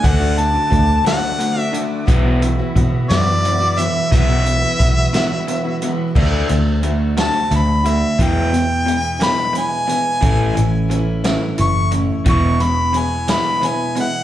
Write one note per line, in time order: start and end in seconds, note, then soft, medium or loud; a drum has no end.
0.00 0.20 D3 medium
0.00 0.20 A3 medium
0.00 0.19 D4 medium
0.00 0.19 F#4 medium
0.00 2.05 A4 medium
0.00 2.05 D5 medium
0.00 2.04 F#5 medium
0.00 2.05 D6 medium
0.00 closed hi-hat medium
0.04 0.57 D2 medium
0.04 0.41 F#5 medium
0.04 kick medium
0.20 0.54 A3 soft
0.20 0.53 D4 soft
0.20 0.52 F#4 medium
0.38 0.69 D3 medium
0.38 0.69 A3 medium
0.38 1.07 A5 medium
0.38 closed hi-hat medium
0.53 0.70 A3 soft
0.53 0.71 D4 soft
0.53 0.71 F#4 medium
0.70 0.98 D2 medium
0.70 1.05 D3 medium
0.70 1.05 A3 medium
0.70 1.05 D4 medium
0.70 1.05 F#4 medium
0.70 kick medium
0.70 closed hi-hat medium
1.06 1.23 D3 medium
1.06 1.22 A3 medium
1.06 1.22 D4 medium
1.06 1.21 F#4 medium
1.06 1.60 F#5 medium
1.06 snare loud
1.06 closed hi-hat medium
1.22 1.56 A3 soft
1.22 1.56 D4 soft
1.22 1.55 F#4 soft
1.39 1.70 D3 medium
1.39 1.70 A3 medium
1.39 closed hi-hat medium
1.56 1.73 A3 soft
1.56 1.73 D4 soft
1.56 1.73 F#4 soft
1.60 1.79 E5 medium
1.73 2.06 D3 medium
1.73 2.06 A3 medium
1.73 2.07 D4 medium
1.73 2.06 F#4 medium
1.73 closed hi-hat medium
2.05 2.60 B1 medium
2.05 2.24 B2 medium
2.05 2.25 E3 medium
2.05 2.25 B3 medium
2.05 2.24 E4 medium
2.05 6.10 F#4 medium
2.05 2.23 F#4 medium
2.05 6.10 B4 medium
2.05 6.10 E5 medium
2.05 6.10 B5 medium
2.05 kick loud
2.05 closed hi-hat medium
2.24 2.59 B3 soft
2.24 2.58 E4 soft
2.24 2.57 F#4 medium
2.42 2.73 B2 medium
2.42 2.73 E3 medium
2.42 closed hi-hat medium
2.58 2.75 B3 soft
2.58 2.76 E4 medium
2.58 2.76 F#4 medium
2.76 3.06 B2 medium
2.76 3.02 B2 medium
2.76 3.08 E3 medium
2.76 3.09 B3 medium
2.76 3.09 E4 medium
2.76 3.10 F#4 medium
2.76 kick medium
2.76 closed hi-hat medium
3.09 3.88 F#2 medium
3.09 3.27 B2 medium
3.09 3.27 E3 medium
3.09 3.27 B3 medium
3.09 3.26 E4 medium
3.09 3.25 F#4 medium
3.09 3.81 D5 medium
3.09 snare loud
3.09 closed hi-hat medium
3.26 3.61 B3 soft
3.26 3.60 E4 soft
3.26 3.59 F#4 soft
3.45 3.75 B2 medium
3.45 3.75 E3 medium
3.45 closed hi-hat medium
3.60 3.76 B3 soft
3.60 3.78 E4 soft
3.60 3.78 F#4 medium
3.77 4.08 B2 medium
3.77 4.10 E3 medium
3.77 4.11 B3 medium
3.77 4.10 E4 medium
3.77 4.11 F#4 medium
3.77 4.11 E5 loud
3.77 closed hi-hat medium
4.11 4.64 B1 medium
4.11 4.28 B2 medium
4.11 4.29 E3 medium
4.11 4.29 B3 medium
4.11 4.29 E4 medium
4.11 4.27 F#4 medium
4.11 5.78 E5 loud
4.11 kick loud
4.11 closed hi-hat medium
4.28 4.64 B3 soft
4.28 4.63 E4 soft
4.28 4.62 F#4 medium
4.46 4.77 B2 medium
4.46 4.77 E3 medium
4.46 closed hi-hat medium
4.63 4.80 B3 soft
4.63 4.80 E4 soft
4.63 4.80 F#4 medium
4.79 5.06 B1 medium
4.79 5.10 B2 medium
4.79 5.12 E3 medium
4.79 5.13 B3 medium
4.79 5.13 E4 medium
4.79 5.13 F#4 medium
4.79 kick medium
4.79 closed hi-hat medium
5.13 5.31 B2 medium
5.13 5.31 E3 medium
5.13 5.30 B3 medium
5.13 5.30 E4 loud
5.13 5.29 F#4 loud
5.13 snare loud
5.13 closed hi-hat medium
5.30 5.64 B3 soft
5.30 5.63 E4 medium
5.30 5.62 F#4 soft
5.48 5.78 B2 medium
5.48 5.78 E3 medium
5.48 closed hi-hat medium
5.64 5.81 B3 medium
5.64 5.81 E4 medium
5.64 5.81 F#4 medium
5.81 6.13 B2 medium
5.81 6.14 E3 medium
5.81 6.15 B3 medium
5.81 6.15 E4 medium
5.81 6.15 F#4 medium
5.81 closed hi-hat medium
6.15 6.42 D2 medium
6.15 6.80 D3 medium
6.15 6.82 A3 medium
6.15 6.82 D4 medium
6.15 6.83 F#4 medium
6.15 kick medium
6.15 crash loud
6.49 7.28 D2 medium
6.49 6.80 D3 medium
6.49 6.80 A3 medium
6.49 closed hi-hat medium
6.82 7.16 D3 medium
6.82 7.17 A3 medium
6.82 7.16 D4 medium
6.82 7.16 F#4 medium
6.82 closed hi-hat medium
7.17 7.86 D3 medium
7.17 7.85 A3 medium
7.17 7.84 D4 medium
7.17 7.83 F#4 medium
7.17 7.52 A5 medium
7.17 snare loud
7.17 closed hi-hat medium
7.51 8.03 D2 medium
7.51 7.82 D3 medium
7.51 7.82 A3 medium
7.51 closed hi-hat medium
7.56 7.90 B5 medium
7.84 8.16 D3 medium
7.84 8.18 A3 soft
7.84 8.18 D4 soft
7.84 8.18 F#4 medium
7.84 closed hi-hat medium
7.88 8.20 E5 medium
8.18 8.86 E2 medium
8.18 9.23 E2 medium
8.18 8.87 B2 medium
8.18 8.85 E3 medium
8.18 8.85 G#3 medium
8.18 8.86 B3 medium
8.18 8.87 E4 medium
8.18 kick medium
8.18 closed hi-hat medium
8.22 9.19 G5 medium
8.52 8.83 E2 medium
8.52 8.83 B2 medium
8.52 closed hi-hat medium
8.86 9.17 E2 medium
8.86 9.17 B2 medium
8.86 9.19 E3 medium
8.86 9.18 G#3 medium
8.86 9.18 B3 medium
8.86 9.18 E4 medium
8.86 closed hi-hat medium
9.19 9.89 E2 medium
9.19 9.88 B2 medium
9.19 9.89 E3 medium
9.19 9.88 G#3 medium
9.19 9.87 B3 medium
9.19 9.87 E4 medium
9.19 9.55 B5 medium
9.19 snare loud
9.19 closed hi-hat medium
9.53 9.85 E2 medium
9.53 9.85 B2 medium
9.53 closed hi-hat medium
9.58 10.88 G#5 medium
9.87 10.19 E2 medium
9.87 10.19 B2 medium
9.87 10.20 E3 soft
9.87 10.21 G#3 soft
9.87 10.22 B3 soft
9.87 10.21 E4 medium
9.87 closed hi-hat medium
10.21 10.49 A1 medium
10.21 10.90 A2 medium
10.21 10.88 E3 medium
10.21 10.88 A3 medium
10.21 10.89 C#4 medium
10.21 10.90 E4 medium
10.21 kick loud
10.21 closed hi-hat medium
10.55 11.35 A1 medium
10.55 10.87 A2 medium
10.55 10.87 E3 medium
10.55 closed hi-hat medium
10.89 11.21 A2 medium
10.89 11.24 E3 medium
10.89 11.23 A3 medium
10.89 11.23 C#4 medium
10.89 11.23 E4 medium
10.89 closed hi-hat medium
11.24 11.93 A2 medium
11.24 11.93 E3 medium
11.24 11.92 A3 medium
11.24 11.92 C#4 medium
11.24 11.91 E4 medium
11.24 snare loud
11.24 closed hi-hat medium
11.58 12.11 F#1 medium
11.58 11.89 A2 medium
11.58 11.89 E3 medium
11.58 11.93 C#6 medium
11.58 closed hi-hat medium
11.91 12.23 A2 medium
11.91 12.23 E3 medium
11.91 12.26 A3 soft
11.91 12.27 C#4 medium
11.91 12.26 E4 soft
11.91 closed hi-hat medium
12.25 13.30 E1 medium
12.25 12.94 E2 medium
12.25 12.94 B2 medium
12.25 12.92 E3 medium
12.25 12.93 G#3 medium
12.25 12.94 B3 medium
12.25 12.94 E4 medium
12.25 12.64 C#6 medium
12.25 kick medium
12.25 closed hi-hat medium
12.60 12.91 E2 medium
12.60 12.91 B2 medium
12.60 13.00 B5 medium
12.60 closed hi-hat medium
12.94 13.25 E2 medium
12.94 13.25 B2 medium
12.94 13.28 E3 medium
12.94 13.28 G#3 medium
12.94 13.28 B3 medium
12.94 13.28 E4 medium
12.94 closed hi-hat medium
12.98 13.34 G#5 medium
13.28 13.98 E2 soft
13.28 13.97 B2 medium
13.28 13.97 E3 medium
13.28 13.96 G#3 medium
13.28 13.96 B3 medium
13.28 13.95 E4 medium
13.28 snare loud
13.28 closed hi-hat medium
13.32 13.68 B5 medium
13.61 13.93 E2 medium
13.61 13.93 B2 medium
13.61 closed hi-hat medium
13.67 13.98 G#5 medium
13.96 14.23 E2 medium
13.96 14.23 B2 medium
13.96 14.23 E3 soft
13.96 14.23 G#3 soft
13.96 14.23 B3 soft
13.96 14.23 E4 medium
13.96 closed hi-hat medium
14.00 14.23 F#5 medium